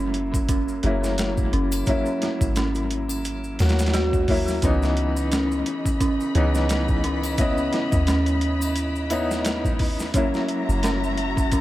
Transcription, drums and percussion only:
0.00 maracas soft
0.14 closed hi-hat medium
0.34 kick medium
0.34 maracas medium
0.49 kick loud
0.49 closed hi-hat medium
0.49 maracas medium
0.68 maracas soft
0.83 closed hi-hat medium
1.04 snare soft
1.04 maracas medium
1.18 snare loud
1.18 closed hi-hat medium
1.18 maracas medium
1.38 kick medium
1.38 maracas soft
1.53 closed hi-hat medium
1.72 closed hi-hat soft
1.72 triangle medium
1.72 maracas medium
1.86 kick loud
1.86 closed hi-hat medium
1.86 maracas medium
2.06 maracas soft
2.22 snare medium
2.22 closed hi-hat medium
2.41 kick medium
2.41 maracas medium
2.56 snare loud
2.56 closed hi-hat medium
2.56 maracas medium
2.75 closed hi-hat soft
2.75 maracas soft
2.91 closed hi-hat medium
3.09 triangle medium
3.09 maracas medium
3.25 closed hi-hat medium
3.25 maracas medium
3.44 maracas soft
3.59 snare medium
3.59 closed hi-hat medium
3.59 triangle medium
3.69 snare medium
3.69 closed hi-hat medium
3.79 snare medium
3.79 closed hi-hat medium
3.79 maracas medium
3.86 snare medium
3.86 closed hi-hat medium
3.94 snare loud
3.94 closed hi-hat medium
3.94 maracas medium
4.13 kick medium
4.13 maracas soft
4.28 kick medium
4.28 open hi-hat medium
4.48 snare soft
4.48 maracas medium
4.62 kick loud
4.62 closed hi-hat medium
4.62 maracas medium
4.82 snare soft
4.82 maracas soft
4.97 closed hi-hat medium
5.17 maracas medium
5.32 snare loud
5.32 closed hi-hat medium
5.32 maracas medium
5.52 maracas soft
5.66 closed hi-hat medium
5.86 kick medium
5.86 maracas medium
6.01 kick loud
6.01 closed hi-hat medium
6.01 maracas medium
6.20 maracas soft
6.35 closed hi-hat medium
6.55 snare soft
6.55 maracas medium
6.69 snare loud
6.69 closed hi-hat medium
6.69 maracas medium
6.88 kick medium
6.88 maracas soft
7.04 closed hi-hat medium
7.23 closed hi-hat soft
7.23 triangle medium
7.23 maracas medium
7.38 kick loud
7.38 closed hi-hat medium
7.38 maracas medium
7.58 maracas soft
7.73 snare medium
7.73 closed hi-hat medium
7.92 kick loud
7.92 maracas medium
8.07 snare loud
8.07 closed hi-hat medium
8.07 maracas medium
8.26 closed hi-hat soft
8.26 maracas soft
8.41 closed hi-hat medium
8.61 triangle medium
8.61 maracas medium
8.76 closed hi-hat medium
8.76 maracas medium
8.96 maracas soft
9.10 closed hi-hat medium
9.10 triangle soft
9.31 snare soft
9.31 maracas medium
9.45 snare loud
9.45 closed hi-hat medium
9.45 maracas medium
9.65 kick medium
9.65 maracas soft
9.79 kick medium
9.79 open hi-hat medium
10.00 snare soft
10.00 maracas medium
10.14 kick loud
10.14 closed hi-hat medium
10.14 maracas medium
10.34 snare soft
10.34 maracas soft
10.49 closed hi-hat medium
10.69 maracas medium
10.83 snare loud
10.83 closed hi-hat medium
10.83 maracas medium
11.04 maracas soft
11.18 closed hi-hat medium
11.37 kick medium
11.37 maracas medium
11.52 kick loud
11.52 closed hi-hat medium
11.52 maracas medium

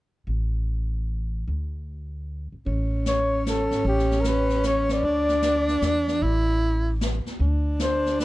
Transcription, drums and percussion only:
2.66 brush sweep soft
2.66 kick soft
3.06 snare medium
3.06 hi-hat pedal soft
3.46 snare medium
3.46 hi-hat pedal medium
3.71 snare soft
3.85 brush sweep soft
3.85 kick soft
3.98 snare soft
4.11 snare soft
4.24 snare medium
4.24 hi-hat pedal medium
4.49 snare soft
4.63 snare medium
4.63 hi-hat pedal medium
4.89 snare soft
5.03 brush sweep soft
5.03 kick soft
5.28 snare soft
5.42 snare medium
5.42 hi-hat pedal medium
5.68 snare soft
5.82 snare medium
5.82 hi-hat pedal medium
6.08 snare soft
6.22 brush sweep soft
6.22 kick soft
7.01 snare medium
7.01 hi-hat pedal medium
7.26 snare soft
7.40 brush sweep soft
7.40 kick soft
7.79 snare medium
7.79 hi-hat pedal medium
8.06 snare soft
8.20 snare medium
8.20 hi-hat pedal medium

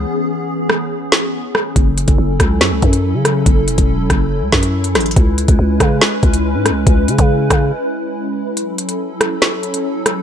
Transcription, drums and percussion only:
0.70 cross-stick loud
1.12 snare loud
1.55 cross-stick medium
1.76 kick loud
1.76 closed hi-hat medium
1.98 closed hi-hat medium
2.08 kick loud
2.08 closed hi-hat medium
2.40 kick medium
2.40 cross-stick loud
2.40 closed hi-hat medium
2.61 snare loud
2.82 kick loud
2.82 closed hi-hat soft
2.93 closed hi-hat medium
3.25 cross-stick medium
3.25 closed hi-hat medium
3.46 kick loud
3.46 closed hi-hat medium
3.68 closed hi-hat medium
3.78 kick loud
3.78 closed hi-hat medium
4.10 kick medium
4.10 cross-stick loud
4.10 closed hi-hat medium
4.52 kick loud
4.52 snare loud
4.63 closed hi-hat medium
4.84 closed hi-hat medium
4.95 cross-stick medium
4.95 snare medium
4.95 closed hi-hat medium
5.00 closed hi-hat medium
5.06 closed hi-hat medium
5.11 closed hi-hat medium
5.16 kick loud
5.16 closed hi-hat medium
5.38 closed hi-hat medium
5.48 kick loud
5.48 closed hi-hat medium
5.80 kick medium
5.80 cross-stick loud
5.80 closed hi-hat medium
6.01 snare loud
6.23 kick loud
6.23 closed hi-hat soft
6.34 closed hi-hat medium
6.66 cross-stick medium
6.66 closed hi-hat medium
6.87 kick loud
6.87 closed hi-hat medium
7.08 closed hi-hat medium
7.18 kick loud
7.18 closed hi-hat medium
7.50 kick medium
7.50 cross-stick loud
7.50 closed hi-hat medium
8.57 closed hi-hat medium
8.78 closed hi-hat medium
8.89 closed hi-hat medium
9.21 cross-stick loud
9.21 closed hi-hat medium
9.42 snare loud
9.63 closed hi-hat soft
9.74 closed hi-hat medium
10.06 cross-stick medium
10.06 closed hi-hat medium

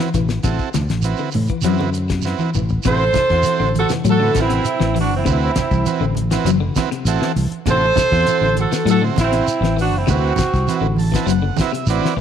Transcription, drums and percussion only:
0.14 kick medium
0.14 snare soft
0.14 closed hi-hat soft
0.14 low conga medium
0.14 shekere medium
0.29 snare medium
0.29 shekere soft
0.43 kick medium
0.43 snare soft
0.43 closed hi-hat medium
0.43 shekere medium
0.59 kick medium
0.59 shekere soft
0.74 snare medium
0.74 closed hi-hat medium
0.74 high conga medium
0.74 low conga medium
0.74 shekere medium
0.88 snare medium
0.88 closed hi-hat soft
0.88 high conga medium
0.88 shekere soft
1.02 closed hi-hat medium
1.02 shekere medium
1.17 shekere soft
1.31 open hi-hat medium
1.31 high conga medium
1.31 low conga medium
1.31 shekere medium
1.47 kick medium
1.47 closed hi-hat soft
1.47 shekere soft
1.61 closed hi-hat medium
1.61 high conga medium
1.61 shekere medium
1.78 high conga medium
1.78 shekere soft
1.93 closed hi-hat soft
1.93 shekere medium
2.09 kick medium
2.09 snare medium
2.09 closed hi-hat soft
2.09 shekere soft
2.22 shekere medium
2.26 snare soft
2.38 high conga medium
2.38 shekere soft
2.54 mid tom medium
2.54 low conga medium
2.54 shekere medium
2.69 floor tom medium
2.69 shekere soft
2.83 kick medium
2.83 closed hi-hat medium
2.83 low conga medium
2.83 shekere medium
3.13 kick medium
3.13 snare medium
3.13 closed hi-hat medium
3.13 high conga medium
3.13 low conga medium
3.13 shekere medium
3.29 kick medium
3.29 snare soft
3.29 shekere soft
3.43 closed hi-hat medium
3.43 high conga medium
3.43 shekere medium
3.75 closed hi-hat medium
3.75 high conga medium
3.75 shekere soft
3.89 snare medium
3.89 closed hi-hat medium
3.89 low conga medium
3.89 shekere medium
4.05 closed hi-hat medium
4.05 high conga medium
4.05 shekere medium
4.35 kick medium
4.35 snare medium
4.35 closed hi-hat soft
4.35 high conga medium
4.35 shekere medium
4.49 snare soft
4.49 closed hi-hat medium
4.49 shekere soft
4.65 closed hi-hat medium
4.65 shekere loud
4.80 snare medium
4.95 open hi-hat medium
4.95 high conga medium
4.95 shekere soft
5.26 kick medium
5.26 closed hi-hat medium
5.26 low conga medium
5.26 shekere medium
5.56 kick medium
5.56 snare medium
5.56 closed hi-hat medium
5.56 high conga medium
5.56 low conga medium
5.56 shekere medium
5.71 kick medium
5.71 high conga medium
5.71 shekere soft
5.85 closed hi-hat medium
5.85 high conga medium
5.85 shekere medium
6.15 closed hi-hat medium
6.15 high conga medium
6.15 shekere soft
6.31 snare medium
6.31 closed hi-hat medium
6.31 shekere medium
6.46 closed hi-hat medium
6.46 high conga medium
6.46 shekere medium
6.76 kick medium
6.76 snare medium
6.76 closed hi-hat medium
6.76 high conga loud
6.76 shekere medium
6.92 closed hi-hat medium
6.92 shekere soft
7.06 closed hi-hat medium
7.06 shekere medium
7.22 snare medium
7.36 open hi-hat medium
7.36 high conga medium
7.36 shekere soft
7.52 closed hi-hat medium
7.66 kick medium
7.66 closed hi-hat medium
7.66 low conga medium
7.66 shekere medium
7.96 kick medium
7.96 snare medium
7.96 closed hi-hat medium
7.96 high conga loud
7.96 low conga medium
7.96 shekere medium
8.11 kick medium
8.11 snare soft
8.11 high conga medium
8.11 shekere soft
8.26 closed hi-hat medium
8.26 high conga medium
8.26 shekere medium
8.57 closed hi-hat medium
8.57 high conga medium
8.57 shekere soft
8.72 snare medium
8.72 closed hi-hat medium
8.72 shekere medium
8.87 closed hi-hat medium
8.87 shekere medium
9.16 kick medium
9.16 snare medium
9.16 closed hi-hat medium
9.16 high conga medium
9.16 shekere medium
9.32 snare soft
9.32 closed hi-hat medium
9.32 shekere soft
9.47 closed hi-hat medium
9.47 shekere medium
9.63 snare medium
9.78 open hi-hat medium
9.78 shekere soft
10.07 kick medium
10.07 closed hi-hat medium
10.07 low conga medium
10.07 shekere medium
10.36 kick medium
10.36 snare medium
10.36 closed hi-hat medium
10.36 high conga medium
10.36 low conga medium
10.36 shekere medium
10.54 kick medium
10.54 snare soft
10.54 shekere soft
10.67 closed hi-hat medium
10.67 high conga medium
10.67 shekere medium
10.96 open hi-hat medium
10.96 high conga medium
10.96 shekere soft
11.14 kick medium
11.14 snare medium
11.14 closed hi-hat soft
11.14 shekere medium
11.27 closed hi-hat medium
11.27 shekere medium
11.57 kick medium
11.57 snare medium
11.57 closed hi-hat medium
11.57 high conga loud
11.57 shekere medium
11.73 closed hi-hat medium
11.73 shekere soft
11.86 closed hi-hat medium
11.86 shekere medium
12.05 snare medium

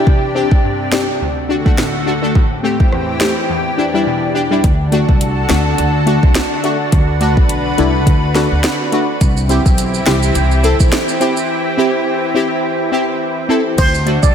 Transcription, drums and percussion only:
0.07 kick loud
0.51 kick medium
0.92 snare loud
1.66 kick medium
1.78 snare loud
2.35 kick loud
2.80 kick medium
2.92 cross-stick medium
3.21 snare loud
4.64 kick loud
4.64 closed hi-hat medium
4.92 closed hi-hat medium
5.09 kick medium
5.21 closed hi-hat medium
5.50 snare loud
5.50 closed hi-hat medium
5.78 closed hi-hat medium
6.07 closed hi-hat soft
6.23 kick loud
6.35 snare loud
6.35 closed hi-hat medium
6.64 closed hi-hat medium
6.92 kick loud
6.92 closed hi-hat medium
7.21 closed hi-hat medium
7.37 kick loud
7.49 closed hi-hat medium
7.78 closed hi-hat medium
8.07 kick medium
8.07 closed hi-hat medium
8.35 snare medium
8.35 closed hi-hat soft
8.64 snare loud
8.64 closed hi-hat medium
8.92 closed hi-hat medium
9.21 kick loud
9.21 closed hi-hat medium
9.21 maracas medium
9.37 maracas medium
9.49 closed hi-hat medium
9.49 maracas medium
9.66 kick loud
9.66 maracas medium
9.78 closed hi-hat medium
9.78 maracas medium
9.94 maracas medium
10.06 snare loud
10.06 closed hi-hat medium
10.23 maracas medium
10.35 closed hi-hat medium
10.35 maracas medium
10.51 maracas medium
10.64 closed hi-hat medium
10.64 maracas medium
10.80 kick medium
10.80 maracas medium
10.92 snare loud
10.92 closed hi-hat medium
10.92 maracas medium
11.08 maracas medium
11.21 closed hi-hat medium
11.21 maracas medium
11.37 maracas medium
13.78 kick loud
13.78 closed hi-hat medium
13.78 crash medium
13.78 maracas medium
13.94 maracas medium
14.07 closed hi-hat medium
14.23 kick loud
14.23 maracas medium

